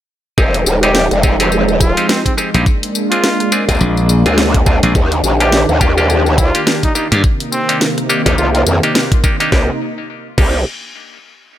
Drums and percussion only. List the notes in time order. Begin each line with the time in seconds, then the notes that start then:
0.38 kick, tambourine
0.54 closed hi-hat, tambourine
0.66 tambourine
0.83 closed hi-hat, tambourine
0.95 snare, tambourine
1.11 cross-stick, closed hi-hat, tambourine
1.23 kick, tambourine
1.40 closed hi-hat, tambourine
1.52 tambourine
1.68 tambourine
1.81 kick, tambourine
1.97 closed hi-hat, tambourine
2.09 snare, tambourine
2.26 kick, closed hi-hat, tambourine
2.38 cross-stick, tambourine
2.54 closed hi-hat, tambourine
2.66 kick, tambourine
2.83 closed hi-hat, tambourine
2.95 tambourine
3.12 closed hi-hat, tambourine
3.24 snare, tambourine
3.40 cross-stick, closed hi-hat, tambourine
3.52 tambourine
3.69 kick, closed hi-hat, tambourine
3.71 tambourine
3.75 tambourine
3.77 tambourine
3.79 tambourine
3.81 tambourine
3.97 tambourine
4.09 tambourine
4.26 closed hi-hat, tambourine
4.38 snare, tambourine
4.54 kick, closed hi-hat, tambourine
4.66 kick, tambourine
4.83 closed hi-hat, tambourine
4.95 kick, tambourine
5.12 closed hi-hat, tambourine
5.24 tambourine
5.40 closed hi-hat, tambourine
5.52 snare, tambourine
5.69 cross-stick, tambourine
5.81 kick, tambourine
5.98 tambourine
6.10 tambourine
6.26 tambourine
6.38 kick, tambourine
6.55 closed hi-hat, tambourine
6.67 snare, tambourine
6.83 kick, closed hi-hat, tambourine
6.95 cross-stick, tambourine
7.12 closed hi-hat, tambourine
7.24 kick, tambourine
7.40 closed hi-hat, tambourine
7.52 tambourine
7.69 closed hi-hat, tambourine
7.81 snare, tambourine
7.98 cross-stick, closed hi-hat, tambourine
8.10 tambourine
8.26 kick, closed hi-hat, tambourine
8.38 tambourine
8.55 closed hi-hat, tambourine
8.67 tambourine
8.83 closed hi-hat, tambourine
8.95 snare, tambourine
9.12 kick, closed hi-hat, tambourine
9.24 kick, tambourine
9.40 closed hi-hat, tambourine
9.52 kick, snare
10.38 kick, crash